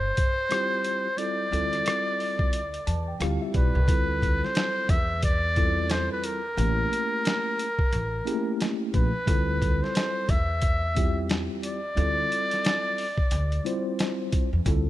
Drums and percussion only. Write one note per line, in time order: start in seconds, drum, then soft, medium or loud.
0.17 kick medium
0.17 closed hi-hat medium
0.51 cross-stick medium
0.51 closed hi-hat medium
0.84 closed hi-hat medium
1.18 closed hi-hat medium
1.53 closed hi-hat soft
1.73 cross-stick soft
1.73 closed hi-hat medium
1.86 cross-stick loud
1.86 closed hi-hat medium
2.20 open hi-hat soft
2.39 kick medium
2.53 closed hi-hat medium
2.74 closed hi-hat medium
2.87 closed hi-hat medium
3.21 cross-stick medium
3.21 closed hi-hat medium
3.54 kick medium
3.54 closed hi-hat medium
3.88 kick loud
3.88 closed hi-hat medium
4.22 kick medium
4.22 closed hi-hat medium
4.44 snare soft
4.55 snare loud
4.55 closed hi-hat medium
4.89 kick medium
4.89 closed hi-hat medium
5.23 kick medium
5.23 closed hi-hat medium
5.56 kick medium
5.56 closed hi-hat medium
5.90 snare loud
5.90 closed hi-hat medium
6.24 closed hi-hat medium
6.58 closed hi-hat medium
6.93 closed hi-hat medium
7.25 snare loud
7.25 closed hi-hat medium
7.59 closed hi-hat medium
7.79 kick medium
7.93 closed hi-hat medium
8.27 closed hi-hat medium
8.61 snare medium
8.61 closed hi-hat medium
8.94 kick medium
8.94 closed hi-hat medium
9.27 kick medium
9.27 closed hi-hat medium
9.62 kick medium
9.62 closed hi-hat medium
9.84 snare soft
9.95 snare loud
9.95 closed hi-hat medium
10.29 kick medium
10.29 closed hi-hat medium
10.62 kick medium
10.62 closed hi-hat medium
10.97 kick medium
10.97 closed hi-hat medium
11.29 snare loud
11.29 closed hi-hat medium
11.63 closed hi-hat medium
11.97 closed hi-hat medium
12.32 closed hi-hat medium
12.51 snare soft
12.51 closed hi-hat medium
12.65 snare loud
12.65 closed hi-hat loud
12.98 open hi-hat soft
13.18 kick medium
13.31 closed hi-hat medium
13.52 closed hi-hat medium
13.66 closed hi-hat medium
13.99 snare loud
13.99 closed hi-hat medium
14.32 kick medium
14.32 closed hi-hat medium
14.66 kick medium
14.66 closed hi-hat medium